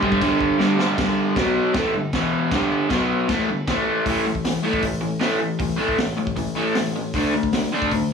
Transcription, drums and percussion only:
0.03 kick
0.12 kick
0.21 kick, crash
0.41 kick
0.60 snare
0.79 snare
0.98 kick, snare, crash
1.36 kick, snare, crash
1.74 kick, snare, crash
2.13 kick, snare, crash
2.52 kick, snare, crash
2.90 kick, snare, crash
3.29 kick, snare, crash
3.67 kick, snare, crash
4.06 kick, open hi-hat
4.35 kick
4.45 snare, open hi-hat
4.73 kick
4.82 kick, open hi-hat
5.21 snare, open hi-hat
5.59 kick, open hi-hat
5.88 kick
5.98 snare, open hi-hat
6.27 kick
6.37 kick, open hi-hat
6.75 snare, open hi-hat
7.14 kick, open hi-hat
7.43 kick
7.53 snare, open hi-hat
7.82 kick
7.91 kick, open hi-hat

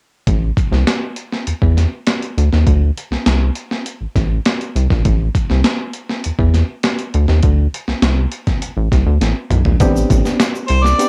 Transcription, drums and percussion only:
0.27 kick, closed hi-hat
0.57 kick, closed hi-hat
0.73 snare
0.87 snare, closed hi-hat
1.16 closed hi-hat
1.32 snare
1.47 closed hi-hat
1.62 kick
1.77 snare, closed hi-hat
2.07 snare, closed hi-hat
2.22 closed hi-hat
2.38 closed hi-hat
2.52 snare
2.67 kick, closed hi-hat
2.97 closed hi-hat
3.12 snare
3.26 snare, closed hi-hat
3.56 closed hi-hat
3.71 snare
3.86 closed hi-hat
4.16 kick, snare, closed hi-hat
4.46 snare, closed hi-hat
4.61 closed hi-hat
4.76 closed hi-hat
4.90 kick, snare
5.05 kick, closed hi-hat
5.35 kick, closed hi-hat
5.50 snare
5.64 snare, closed hi-hat
5.94 closed hi-hat
6.10 snare
6.24 closed hi-hat
6.39 kick
6.54 snare, closed hi-hat
6.83 snare, closed hi-hat
6.99 closed hi-hat
7.14 closed hi-hat
7.28 snare
7.43 kick, closed hi-hat
7.74 closed hi-hat
7.88 snare
8.02 snare, closed hi-hat
8.32 closed hi-hat
8.47 kick, snare, closed hi-hat
8.62 closed hi-hat
8.92 kick, snare, closed hi-hat
9.21 snare, closed hi-hat
9.50 closed hi-hat, mid tom
9.65 floor tom
9.80 kick, closed hi-hat, shaker
9.96 shaker
10.10 kick, closed hi-hat, shaker
10.25 snare, shaker
10.40 snare, closed hi-hat, shaker
10.55 shaker
10.68 closed hi-hat
10.84 snare, shaker
10.99 closed hi-hat, shaker

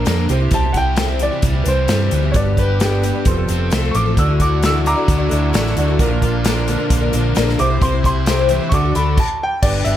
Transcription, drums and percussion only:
0.06 snare, closed hi-hat
0.29 closed hi-hat
0.51 kick, closed hi-hat
0.74 kick, closed hi-hat
0.96 snare, closed hi-hat
1.19 closed hi-hat
1.42 kick, closed hi-hat
1.66 closed hi-hat
1.88 snare, closed hi-hat
2.11 closed hi-hat
2.34 kick, closed hi-hat
2.57 kick, closed hi-hat
2.80 snare, closed hi-hat
3.03 closed hi-hat
3.25 kick, closed hi-hat
3.49 closed hi-hat
3.71 snare, closed hi-hat
3.95 closed hi-hat
4.17 kick, closed hi-hat
4.40 kick, closed hi-hat
4.63 snare, closed hi-hat
4.86 closed hi-hat
5.08 kick, closed hi-hat
5.31 closed hi-hat
5.54 snare, closed hi-hat
5.67 snare
5.77 closed hi-hat
5.99 kick, closed hi-hat
6.22 kick, closed hi-hat
6.45 snare, closed hi-hat
6.68 closed hi-hat
6.90 kick, closed hi-hat
7.13 closed hi-hat
7.36 snare, closed hi-hat
7.49 snare
7.59 closed hi-hat
7.82 kick, closed hi-hat
8.04 kick, closed hi-hat
8.26 snare, closed hi-hat
8.49 closed hi-hat
8.72 kick, closed hi-hat
8.95 closed hi-hat
9.18 kick, crash
9.63 kick, crash
9.85 closed hi-hat

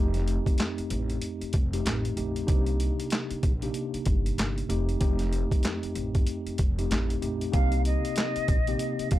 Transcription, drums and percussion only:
0.14 snare, closed hi-hat
0.28 closed hi-hat
0.46 kick, closed hi-hat
0.58 snare, clap, closed hi-hat
0.78 closed hi-hat
0.90 closed hi-hat
1.10 closed hi-hat
1.22 closed hi-hat
1.41 closed hi-hat
1.53 kick, closed hi-hat
1.73 closed hi-hat
1.86 snare, clap, closed hi-hat
2.05 closed hi-hat
2.17 closed hi-hat
2.36 closed hi-hat
2.48 kick, closed hi-hat
2.66 closed hi-hat
2.80 closed hi-hat
3.00 closed hi-hat
3.10 snare, clap, closed hi-hat
3.31 closed hi-hat
3.43 kick, closed hi-hat
3.62 closed hi-hat
3.74 closed hi-hat
3.94 closed hi-hat
4.05 kick, closed hi-hat
4.26 closed hi-hat
4.38 snare, clap, closed hi-hat
4.58 closed hi-hat
4.70 closed hi-hat
4.89 closed hi-hat
5.01 kick, closed hi-hat
5.19 snare, closed hi-hat
5.33 closed hi-hat
5.51 kick, closed hi-hat
5.63 snare, clap, closed hi-hat
5.83 closed hi-hat
5.95 closed hi-hat
6.15 kick, closed hi-hat
6.27 closed hi-hat
6.47 closed hi-hat
6.58 kick, closed hi-hat
6.79 closed hi-hat
6.91 snare, clap, closed hi-hat
7.10 closed hi-hat
7.22 closed hi-hat
7.41 closed hi-hat
7.53 kick, closed hi-hat
7.72 closed hi-hat
7.85 closed hi-hat
8.05 closed hi-hat
8.16 snare, clap, closed hi-hat
8.36 closed hi-hat
8.48 kick, closed hi-hat
8.67 closed hi-hat
8.79 closed hi-hat
8.99 closed hi-hat
9.11 kick, closed hi-hat

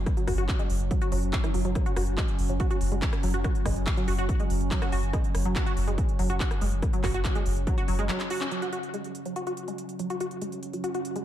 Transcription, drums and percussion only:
0.06 kick, cross-stick, closed hi-hat
0.17 closed hi-hat
0.27 kick, cross-stick, open hi-hat
0.38 closed hi-hat
0.49 kick, clap, closed hi-hat
0.59 closed hi-hat
0.70 open hi-hat
0.80 closed hi-hat
0.91 kick, closed hi-hat
1.01 closed hi-hat
1.12 open hi-hat
1.23 closed hi-hat
1.33 kick, clap, closed hi-hat
1.44 cross-stick, closed hi-hat
1.54 open hi-hat
1.65 closed hi-hat
1.75 kick, cross-stick, closed hi-hat
1.86 closed hi-hat
1.96 cross-stick, open hi-hat
2.07 closed hi-hat
2.18 kick, clap, closed hi-hat
2.28 closed hi-hat
2.39 open hi-hat
2.49 closed hi-hat
2.60 kick, closed hi-hat
2.70 closed hi-hat
2.81 open hi-hat
2.92 closed hi-hat
3.02 kick, clap, closed hi-hat
3.13 cross-stick, closed hi-hat
3.23 open hi-hat
3.34 closed hi-hat
3.44 kick, cross-stick, closed hi-hat
3.55 closed hi-hat
3.65 kick, cross-stick, open hi-hat
3.76 closed hi-hat
3.87 kick, clap, closed hi-hat
3.97 closed hi-hat
4.08 open hi-hat
4.18 closed hi-hat
4.29 kick, closed hi-hat
4.40 closed hi-hat
4.50 open hi-hat
4.61 closed hi-hat
4.71 kick, clap, closed hi-hat
4.82 cross-stick, closed hi-hat
4.92 open hi-hat
5.03 closed hi-hat
5.13 kick, cross-stick, closed hi-hat
5.24 closed hi-hat
5.35 cross-stick, open hi-hat
5.45 closed hi-hat
5.56 kick, clap, closed hi-hat
5.66 closed hi-hat
5.77 open hi-hat
5.88 closed hi-hat
5.98 kick, closed hi-hat
6.09 closed hi-hat
6.19 open hi-hat
6.30 closed hi-hat
6.40 kick, clap, closed hi-hat
6.51 cross-stick, closed hi-hat
6.61 open hi-hat
6.72 closed hi-hat
6.82 kick, cross-stick, closed hi-hat
6.93 closed hi-hat
7.04 kick, cross-stick, clap, open hi-hat
7.14 closed hi-hat
7.25 kick, clap, closed hi-hat
7.35 closed hi-hat
7.46 open hi-hat
7.57 closed hi-hat
7.67 kick, closed hi-hat
7.78 closed hi-hat
7.88 open hi-hat
7.99 closed hi-hat
8.09 clap, closed hi-hat
8.20 clap, closed hi-hat
8.30 open hi-hat
8.41 clap
8.51 closed hi-hat
8.62 closed hi-hat
8.73 closed hi-hat
8.83 closed hi-hat
8.94 closed hi-hat
9.04 closed hi-hat
9.15 closed hi-hat
9.26 closed hi-hat
9.36 closed hi-hat
9.47 closed hi-hat
9.57 closed hi-hat
9.68 closed hi-hat
9.78 closed hi-hat
9.89 closed hi-hat
9.99 closed hi-hat
10.10 closed hi-hat
10.20 closed hi-hat
10.31 closed hi-hat
10.42 closed hi-hat
10.52 closed hi-hat
10.63 closed hi-hat
10.73 closed hi-hat
10.84 closed hi-hat
10.94 closed hi-hat
11.05 closed hi-hat
11.16 closed hi-hat

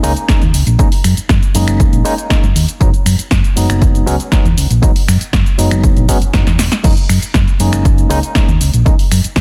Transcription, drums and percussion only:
0.04 open hi-hat, shaker
0.17 closed hi-hat, shaker
0.28 kick, snare, closed hi-hat, shaker
0.42 closed hi-hat, shaker
0.54 open hi-hat, shaker
0.67 closed hi-hat, shaker
0.79 kick, closed hi-hat, shaker
0.92 open hi-hat, shaker
1.04 finger snap, open hi-hat, shaker
1.17 closed hi-hat, shaker
1.29 kick, snare, closed hi-hat, shaker
1.43 closed hi-hat, shaker
1.55 open hi-hat, shaker
1.68 finger snap, closed hi-hat, shaker
1.80 kick, closed hi-hat, shaker
1.93 closed hi-hat, shaker
2.05 open hi-hat, shaker
2.18 closed hi-hat, shaker
2.30 kick, snare, closed hi-hat, shaker
2.44 closed hi-hat, shaker
2.56 open hi-hat, shaker
2.69 closed hi-hat, shaker
2.81 kick, closed hi-hat, shaker
2.94 closed hi-hat, shaker
3.06 finger snap, open hi-hat, shaker
3.19 closed hi-hat, shaker
3.31 kick, snare, closed hi-hat, shaker
3.44 closed hi-hat, shaker
3.57 open hi-hat, shaker
3.70 finger snap, closed hi-hat, shaker
3.82 kick, closed hi-hat, shaker
3.95 closed hi-hat, shaker
4.07 open hi-hat, shaker
4.20 closed hi-hat, shaker
4.32 kick, snare, closed hi-hat, shaker
4.45 closed hi-hat, shaker
4.58 open hi-hat, shaker
4.71 closed hi-hat, shaker
4.83 kick, closed hi-hat, shaker
4.96 open hi-hat, shaker
5.08 finger snap, open hi-hat, shaker
5.21 closed hi-hat, shaker
5.33 kick, snare, closed hi-hat, shaker
5.46 closed hi-hat, shaker
5.59 open hi-hat, shaker
5.71 finger snap, closed hi-hat, shaker
5.84 kick, closed hi-hat, shaker
5.97 closed hi-hat, shaker
6.09 kick, open hi-hat, shaker
6.22 closed hi-hat, shaker
6.33 kick, snare, closed hi-hat, shaker
6.47 snare, closed hi-hat, shaker
6.59 snare, open hi-hat, shaker
6.72 snare, closed hi-hat, shaker
6.84 kick, closed hi-hat, crash, shaker
6.97 closed hi-hat, shaker
7.09 finger snap, open hi-hat, shaker
7.22 closed hi-hat, shaker
7.34 kick, snare, closed hi-hat, shaker
7.48 closed hi-hat, shaker
7.60 open hi-hat, shaker
7.73 finger snap, closed hi-hat, shaker
7.85 kick, closed hi-hat, shaker
7.98 closed hi-hat, shaker
8.11 open hi-hat, shaker
8.23 closed hi-hat, shaker
8.35 kick, snare, closed hi-hat, shaker
8.49 closed hi-hat, shaker
8.61 open hi-hat, shaker
8.74 closed hi-hat, shaker
8.86 kick, closed hi-hat, shaker
8.99 open hi-hat, shaker
9.12 finger snap, open hi-hat, shaker
9.24 closed hi-hat, shaker
9.36 kick, snare, closed hi-hat, shaker

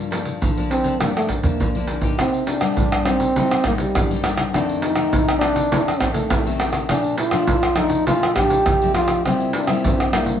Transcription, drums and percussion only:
0.12 pandeiro, shaker
0.25 pandeiro, shaker
0.42 pandeiro, shaker, surdo
0.57 pandeiro, shaker
0.71 pandeiro
0.84 pandeiro, shaker
1.00 pandeiro, tamborim, shaker, surdo
1.17 pandeiro, tamborim, shaker
1.29 pandeiro, surdo
1.43 surdo, pandeiro, shaker
1.60 pandeiro, shaker, surdo
1.75 pandeiro, shaker
1.87 pandeiro, shaker
2.01 pandeiro, shaker, surdo
2.19 pandeiro, tamborim, shaker, surdo
2.34 pandeiro, shaker
2.47 pandeiro, shaker
2.61 pandeiro, tamborim, shaker
2.77 pandeiro, shaker, surdo
2.92 pandeiro, tamborim, shaker
3.05 pandeiro, tamborim, shaker
3.20 pandeiro, shaker
3.36 pandeiro, shaker, surdo
3.51 pandeiro, tamborim, shaker
3.64 pandeiro, tamborim, shaker, surdo
3.78 pandeiro, shaker
3.95 pandeiro, tamborim, shaker, surdo
4.11 pandeiro, shaker
4.24 pandeiro, tamborim
4.37 pandeiro, tamborim, shaker
4.54 pandeiro, tamborim, shaker, surdo
4.69 pandeiro, shaker
4.82 pandeiro, shaker
4.96 pandeiro, tamborim, shaker
5.13 pandeiro, shaker, surdo
5.29 pandeiro, tamborim, shaker
5.41 pandeiro, tamborim
5.56 pandeiro, shaker
5.72 pandeiro, shaker, surdo
5.88 pandeiro, tamborim, shaker
6.00 pandeiro, tamborim, shaker, surdo
6.14 pandeiro, shaker
6.30 pandeiro, tamborim, shaker, surdo
6.47 pandeiro, shaker
6.60 pandeiro, tamborim, shaker
6.73 pandeiro, tamborim, shaker
6.89 pandeiro, tamborim, shaker, surdo
7.04 pandeiro, shaker
7.18 pandeiro, shaker
7.31 pandeiro, tamborim, shaker
7.47 pandeiro, shaker, surdo
7.63 pandeiro, tamborim, shaker
7.76 pandeiro, tamborim, shaker
7.90 pandeiro, shaker
8.07 pandeiro, shaker, surdo
8.23 pandeiro, tamborim, shaker
8.36 pandeiro, tamborim, shaker, surdo
8.50 pandeiro, shaker
8.66 pandeiro, tamborim, shaker, surdo
8.82 pandeiro, shaker
8.95 pandeiro, tamborim, shaker
9.08 pandeiro, tamborim, shaker
9.26 pandeiro, tamborim, shaker, surdo
9.40 pandeiro, shaker
9.53 pandeiro
9.67 pandeiro, tamborim, shaker
9.84 pandeiro, shaker, surdo
10.00 pandeiro, tamborim, shaker
10.13 pandeiro, tamborim, shaker
10.26 pandeiro, shaker

